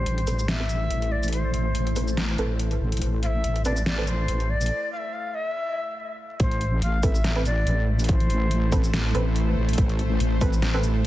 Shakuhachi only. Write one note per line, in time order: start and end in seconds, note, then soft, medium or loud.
0.00 0.49 C5 loud
0.48 1.13 E5 loud
1.11 1.32 D5 medium
1.32 2.13 C5 medium
3.23 3.62 E5 loud
3.23 3.27 F5 medium
3.65 3.85 D5 medium
3.86 4.09 D5 medium
4.07 4.51 C5 loud
4.50 4.91 D5 loud
4.92 4.98 F5 loud
4.97 5.14 E5 loud
5.13 5.36 F5 loud
5.34 5.45 D#5 loud
5.45 6.19 E5 loud
6.40 6.79 C5 loud
6.82 7.05 F5 loud
7.03 7.45 E5 loud
7.46 7.85 D5 loud
8.09 8.89 C5 medium